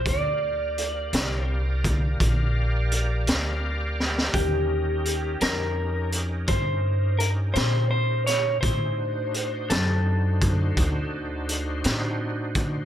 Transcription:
0.05 1.10 D2 medium
0.05 4.31 G4 medium
0.05 4.31 A#4 medium
0.05 4.31 D5 medium
0.05 1.44 D5 medium
0.05 4.31 F5 medium
0.05 kick loud
0.05 closed hi-hat medium
0.78 closed hi-hat medium
1.13 2.17 C2 medium
1.13 snare loud
1.13 closed hi-hat medium
1.44 2.18 C5 medium
1.84 kick medium
1.84 closed hi-hat medium
2.20 3.24 A#1 medium
2.20 kick medium
2.20 closed hi-hat medium
2.92 closed hi-hat medium
3.27 4.31 D2 medium
3.27 snare loud
3.27 closed hi-hat medium
4.00 snare soft
4.18 snare medium
4.32 5.38 D#2 medium
4.32 8.58 C#4 medium
4.32 8.58 D#4 medium
4.32 8.58 G4 medium
4.32 5.45 G4 medium
4.32 8.58 A#4 medium
4.32 kick loud
4.32 closed hi-hat medium
5.05 closed hi-hat soft
5.41 6.45 F2 medium
5.41 6.09 A#4 medium
5.41 snare loud
5.41 closed hi-hat medium
6.12 closed hi-hat medium
6.47 7.52 G2 medium
6.47 7.22 C5 medium
6.47 kick loud
6.47 closed hi-hat medium
7.19 7.28 A#4 medium
7.19 closed hi-hat medium
7.54 8.60 A#2 medium
7.54 7.88 C5 medium
7.54 snare loud
7.54 closed hi-hat medium
7.91 8.26 C5 medium
8.26 8.60 C#5 medium
8.26 snare soft
8.26 closed hi-hat medium
8.61 9.67 A2 medium
8.61 8.98 C#4 medium
8.61 8.97 D#4 medium
8.61 8.99 E4 medium
8.61 8.99 G4 medium
8.61 9.72 C5 medium
8.61 kick medium
8.61 closed hi-hat medium
8.98 12.85 D4 medium
8.98 12.85 D#4 medium
8.98 12.85 F#4 medium
8.98 12.85 C5 medium
9.34 closed hi-hat medium
9.70 10.74 F#2 medium
9.70 11.80 A4 medium
9.70 snare loud
9.70 closed hi-hat medium
10.41 kick medium
10.41 closed hi-hat medium
10.77 11.81 D2 medium
10.77 kick loud
10.77 closed hi-hat medium
11.49 closed hi-hat medium
11.84 12.85 A2 medium
11.84 snare medium
11.84 closed hi-hat medium
12.55 kick medium
12.55 closed hi-hat medium

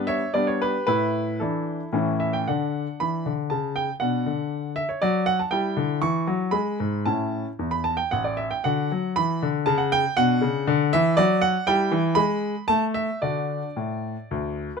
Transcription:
0.00 0.20 G3 medium
0.00 0.21 B3 medium
0.00 0.21 D4 medium
0.07 0.33 C#5 medium
0.07 0.31 E5 medium
0.34 0.73 G3 medium
0.34 0.73 B3 medium
0.34 0.73 D4 medium
0.34 0.48 D5 medium
0.47 0.61 C#5 medium
0.62 0.87 G4 medium
0.62 0.85 B4 medium
0.87 1.39 A2 medium
0.87 1.37 E4 medium
0.87 1.40 B4 medium
1.40 1.79 E3 soft
1.40 1.79 D4 medium
1.40 1.93 E4 medium
1.40 1.88 A4 medium
1.93 2.45 A2 medium
1.93 2.43 E3 medium
1.93 2.43 C#4 medium
1.93 2.43 E4 medium
2.20 2.34 E5 medium
2.33 2.47 G5 medium
2.48 2.85 D3 medium
2.48 3.47 D4 soft
2.48 2.99 F#5 medium
3.00 3.25 E3 soft
3.00 3.31 B5 medium
3.26 3.50 D3 medium
3.50 3.88 C#3 medium
3.50 3.73 A5 medium
3.76 3.91 G5 medium
4.00 4.25 B2 medium
4.00 5.48 D4 soft
4.00 4.72 F#5 medium
4.26 4.81 D3 soft
4.76 4.89 E5 medium
4.89 5.02 C#5 medium
5.02 5.38 F#3 medium
5.02 5.24 D5 medium
5.26 5.39 F#5 medium
5.39 5.52 A5 medium
5.51 5.76 G3 medium
5.51 6.49 E4 soft
5.51 5.97 G5 medium
5.77 6.00 D3 medium
6.02 6.26 E3 medium
6.02 6.53 C#6 medium
6.27 6.52 F#3 medium
6.51 6.78 G#3 medium
6.51 7.05 B5 medium
6.80 7.05 G#2 medium
7.05 7.43 A2 soft
7.05 7.48 C#4 soft
7.05 7.48 E4 soft
7.05 7.45 A5 medium
7.59 7.95 E2 medium
7.71 7.84 B5 medium
7.84 7.97 A5 medium
7.97 8.10 G5 medium
8.11 8.49 A1 medium
8.11 8.24 F#5 medium
8.24 8.37 D5 medium
8.37 8.50 E5 medium
8.51 8.63 G5 medium
8.64 8.89 D3 medium
8.64 9.63 F#4 soft
8.64 9.11 F#5 medium
8.92 9.15 F#3 medium
9.16 9.40 E3 medium
9.16 9.46 B5 loud
9.42 9.66 D3 medium
9.66 10.03 C#3 medium
9.66 9.79 A5 medium
9.78 9.91 F#5 medium
9.92 10.17 G5 loud
10.17 10.41 B2 medium
10.17 11.64 D4 soft
10.17 10.92 F#5 loud
10.41 10.66 C#3 medium
10.67 10.91 D3 medium
10.93 11.17 E3 medium
10.93 11.18 E5 loud
11.17 11.54 F#3 medium
11.17 11.40 D5 loud
11.41 11.67 F#5 loud
11.67 11.92 G3 medium
11.67 12.14 E4 medium
11.67 12.18 G5 loud
11.92 12.16 E3 medium
12.15 12.54 G#3 medium
12.15 12.64 B5 loud
12.68 13.08 A3 medium
12.68 12.84 A5 loud
12.94 13.19 E5 medium
13.22 13.61 D3 medium
13.22 13.66 D4 soft
13.22 13.66 F#4 soft
13.22 14.57 D5 medium
13.77 14.14 A2 medium
14.31 14.68 D2 medium
14.77 14.80 B4 medium

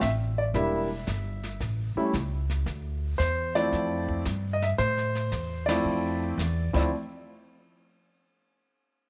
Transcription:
0.01 0.53 A1 medium
0.01 0.09 E5 medium
0.01 kick soft
0.01 snare medium
0.01 hi-hat pedal medium
0.38 0.43 D5 medium
0.54 1.05 E1 medium
0.54 0.87 G3 medium
0.54 0.87 A#3 medium
0.54 0.87 D4 medium
0.54 0.87 E4 medium
0.54 1.56 E5 medium
0.54 brush sweep soft
0.54 kick soft
0.54 snare soft
1.07 1.59 G1 medium
1.07 kick soft
1.07 snare soft
1.07 hi-hat pedal medium
1.43 snare soft
1.60 1.94 A1 medium
1.60 brush sweep soft
1.60 kick soft
1.60 snare soft
1.96 2.12 G3 medium
1.96 2.12 A3 medium
1.96 2.12 C#4 medium
1.96 2.12 E4 medium
1.96 muted upright bass stroke soft
2.13 2.65 C#2 medium
2.13 kick soft
2.13 snare medium
2.13 hi-hat pedal medium
2.50 snare soft
2.66 3.18 D2 medium
2.66 brush sweep soft
2.66 kick soft
2.66 snare soft
3.18 3.71 E2 medium
3.18 3.52 C5 medium
3.18 kick soft
3.18 snare soft
3.18 hi-hat pedal medium
3.55 4.22 F3 medium
3.55 4.22 A3 medium
3.55 4.22 C4 medium
3.55 4.22 E4 medium
3.55 4.21 D5 loud
3.55 snare soft
3.72 4.24 F2 medium
3.72 brush sweep soft
3.72 kick soft
3.72 snare soft
4.09 kick soft
4.25 4.77 G2 medium
4.25 kick soft
4.25 snare medium
4.25 hi-hat pedal medium
4.53 4.62 D#5 medium
4.62 4.68 E5 medium
4.62 snare soft
4.78 5.30 A2 medium
4.78 5.63 C5 loud
4.78 brush sweep soft
4.78 kick soft
4.78 snare soft
4.97 snare soft
5.15 snare soft
5.32 5.83 E2 medium
5.32 kick soft
5.32 snare medium
5.32 hi-hat pedal soft
5.66 6.34 F3 medium
5.66 6.35 A3 medium
5.66 6.35 C4 medium
5.66 6.35 E4 medium
5.66 6.69 D5 medium
5.66 snare medium
5.66 ride medium
5.84 6.36 F2 medium
5.84 brush sweep soft
6.38 6.73 E2 medium
6.38 kick soft
6.38 snare medium
6.38 hi-hat pedal medium
6.73 6.90 D2 loud
6.73 6.89 F3 medium
6.73 6.89 A3 medium
6.73 6.89 C4 medium
6.73 6.89 E4 medium
6.73 6.91 D5 medium
6.73 kick medium
6.73 snare medium
6.73 crash medium

